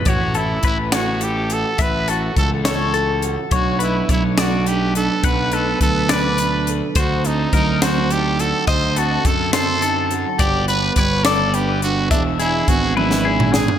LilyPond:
<<
  \new Staff \with { instrumentName = "Clean electric guitar" } { \time 6/8 \key b \minor \tempo 4. = 70 cis''8 a'8 b'8 cis''8 a'4 | e''8 a'4 cis''8 a'4 | cis''8 b'8 cis''8 d''8 b'4 | fis''8 b'4 d''8 b'4 |
c''8 a'8 bes'8 c''8 a'4 | ees''8 a'4 c''8 a'4 | d''8 b'8 cis''8 d''8 b'4 | e''8 gis'4 b'8 gis'4 | }
  \new Staff \with { instrumentName = "Trumpet" } { \time 6/8 \key b \minor fis'8 e'8 e'8 fis'8 g'8 a'8 | b'8 fis'8 a'8 a'4 r8 | fis'8 e'8 e'8 fis'8 g'8 a'8 | b'8 a'8 a'8 b'4 r8 |
fis'8 ees'8 ees'8 fis'8 g'8 a'8 | c''8 fis'8 a'8 a'4 r8 | g'8 b'8 b'8 a'8 g'8 fis'8 | d'8 e'8 fis'8 e'4 gis'8 | }
  \new Staff \with { instrumentName = "Clean electric guitar" } { \time 6/8 \key b \minor << { r8 cis'4 cis'8 e'8 fis'8~ | fis'8 cis'4 cis'8 e'8 fis'8 | <fis a d'>8 a4 a8 d'8 d'8 | r8 a4 a8 d'8 a'8 |
r8 c'4 c'8 ees'8 fis'8~ | fis'8 c'4 c'8 ees'8 fis'8~ | fis'8 b4 b8 d'8 d'8 | <b d' gis'>8 d'4 d'8 d'8 d'8 | } \\ { <a, e>4 e2 | a,4 e2 | b,4 fis2 | b,4 fis2 |
d4 fis2 | d4 fis2 | g,4 g2 | e4 b2 | } >> }
  \new Staff \with { instrumentName = "Fingered electric bass" } { \clef bass \time 6/8 \key b \minor a,,4 a,,2 | a,,4 cis,2 | b,,4 b,,2 | b,,4 d,2 |
d,4 d,2 | d,4 fis,2 | g,,4 g,,2 | e,,4 gis,,2 | }
  \new DrumStaff \with { instrumentName = "Drums" } \drummode { \time 6/8 <hh bd>8 hh8 <hh bd>8 <hh sn>8 hh8 hh8 | <hh bd>8 hh8 <hh bd>8 <hh sn>8 hh8 hh8 | <hh bd>8 hh8 <hh bd>8 <hh sn>8 hh8 hh8 | <hh bd>8 hh8 <hh bd>8 <hh sn>8 hh8 hh8 |
<hh bd>8 hh8 <hh bd>8 <hh sn>8 hh8 hh8 | <hh bd>8 hh8 <hh bd>8 <hh sn>8 hh8 hh8 | <hh bd>8 hh8 <hh bd>8 <hh sn>8 hh8 hh8 | <hh bd>8 hh8 <hh bd>8 tommh16 sn8 toml16 sn16 tomfh16 | }
>>